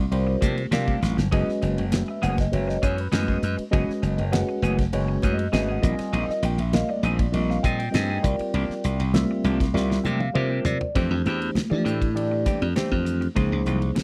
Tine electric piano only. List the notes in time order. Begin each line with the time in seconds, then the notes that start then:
0.11 G3 C4 F4 A#4 C5
0.73 G3 C4 F4 A#4 F5
1.32 G#3 C#4 F#4 B4 D#5
1.92 G#3 C#4 F#4 B4 E5
2.11 E5
2.23 F#5
2.40 D#5
2.51 G#3 C#4 F#4 B4 C#5 E5
2.69 D#5
2.84 C#5
3.00 B4
3.11 G#3 C#4 F#4 B4 D#5
3.71 G#3 C#4 F#4 B4 D#5
4.32 G#3 C#4 F#4 B4 F#5
4.93 G#3 C#4 F#4 B4 C#5
5.23 C#5
5.33 D#5
5.52 G#3 C#4 F#4 B4 D#5 E5
5.71 F#5
5.81 G3 C4 F4 A#4 D#5
5.92 G#5
6.31 D#5
6.45 G5
6.60 E5
6.72 G3 C4 F4 A#4 D#5 F5
6.90 D5
7.03 A#4
7.20 D5
7.32 G3 C4 F4 A#4 D#5
7.51 F5
7.63 G5
7.79 G5
7.91 G3 C4 F4 A#4 D#5
8.22 G3 C4 F4 A#4 D5
9.13 G3 C4 F4 A#4 E5
9.74 G3 C4 F4 A#4 E5
10.04 G5
10.20 F5
10.33 G3 C4 F4 A#4 C5 E5
10.65 D5
10.94 E3 A3 D4 G4 C5
11.70 E3 A3 D4 G4 D5
12.15 E3 A3 D4 G4 D5
12.75 E3 A3 D4 G4 C5
13.35 F3 A#3 D#4 G#4 C5